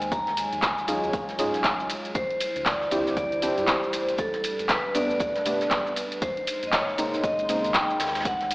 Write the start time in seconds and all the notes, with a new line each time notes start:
Already playing: D#2 C#3 G#3 A#3 C4 D#4 G#5
0.02 closed hi-hat, shaker
0.12 F#3 C#5 A#5, kick, closed hi-hat, ride, shaker
0.27 snare, closed hi-hat
0.37 G#5, closed hi-hat, open hi-hat, ride, shaker
0.52 D#2, closed hi-hat, shaker
0.62 kick, snare, clap, closed hi-hat, ride, shaker
0.78 shaker
0.87 D#2 F#3 C#4 D#4 F4 G#4, closed hi-hat, open hi-hat, ride, shaker
1.03 D#2, closed hi-hat, shaker
1.13 A#1, kick, closed hi-hat, ride, shaker
1.29 snare, closed hi-hat, shaker
1.38 G#2 F#3 C#4 D#4 F4 G#4, closed hi-hat, open hi-hat, ride, shaker
1.54 snare, closed hi-hat, shaker
1.64 kick, snare, clap, closed hi-hat, ride, shaker
1.80 C#2, closed hi-hat, shaker
1.90 closed hi-hat, open hi-hat, ride, shaker
2.05 closed hi-hat, shaker
2.14 G3 E4 C5, kick, closed hi-hat, ride, shaker
2.30 closed hi-hat
2.40 closed hi-hat, open hi-hat, ride, shaker
2.56 D2, closed hi-hat, shaker
2.65 D5, kick, snare, clap, closed hi-hat, open hi-hat, ride, shaker
2.81 snare
2.91 D2 F3 C4 D4 E4 G4, closed hi-hat, open hi-hat, ride, shaker
3.07 D2, snare, shaker
3.17 D5, kick, closed hi-hat, ride, shaker
3.32 closed hi-hat, shaker
3.42 F3 C4 D4 E4 G4, closed hi-hat, open hi-hat, ride, shaker
3.58 G2, closed hi-hat, shaker
3.67 C5, kick, snare, clap, closed hi-hat, ride, shaker
3.83 shaker
3.92 A1, closed hi-hat, open hi-hat, ride, shaker
4.08 closed hi-hat, shaker
4.18 D4 A4 B4, kick, closed hi-hat, ride, shaker
4.33 snare, closed hi-hat
4.43 closed hi-hat, open hi-hat, ride, shaker
4.59 A1, closed hi-hat, shaker
4.68 B4, kick, snare, clap, closed hi-hat, ride, shaker
4.95 A1 C3 G3 A3 B3 D4 D5, closed hi-hat, open hi-hat, ride, shaker
5.09 A1, closed hi-hat, shaker
5.20 E2, kick, closed hi-hat, ride, shaker
5.35 snare, closed hi-hat, shaker
5.45 C3 G3 A3 B3 D4, closed hi-hat, open hi-hat, ride, shaker
5.61 snare, closed hi-hat, shaker
5.71 kick, snare, clap, closed hi-hat, ride, shaker
5.86 closed hi-hat, shaker
5.96 closed hi-hat, open hi-hat, ride, shaker
6.12 closed hi-hat, shaker
6.22 G#3 D#4 C5 C6, kick, closed hi-hat, ride, shaker
6.37 closed hi-hat
6.47 closed hi-hat, open hi-hat, ride, shaker
6.63 A#1, closed hi-hat, shaker
6.67 D#5
6.73 C#5, kick, snare, clap, closed hi-hat, open hi-hat, ride, shaker
6.88 snare
6.98 A#1 C#3 G#3 A#3 C4 D#4, closed hi-hat, open hi-hat, ride, shaker
7.13 A#1, snare, shaker
7.24 D#5, kick, closed hi-hat, ride, shaker
7.39 closed hi-hat, shaker
7.49 C#3 G#3 A#3 C4 D#4, closed hi-hat, open hi-hat, ride, shaker
7.64 D#2, closed hi-hat, shaker
7.74 G5, kick, snare, clap, closed hi-hat, ride, shaker
7.90 shaker
8.00 D#2, snare, open hi-hat, ride, shaker
8.07 snare, open hi-hat
8.15 snare, closed hi-hat, open hi-hat, shaker
8.20 snare, open hi-hat
8.25 A#3 D#4 C#5 F#5, kick, closed hi-hat, ride, shaker
8.41 snare, closed hi-hat
8.51 closed hi-hat, open hi-hat, ride, shaker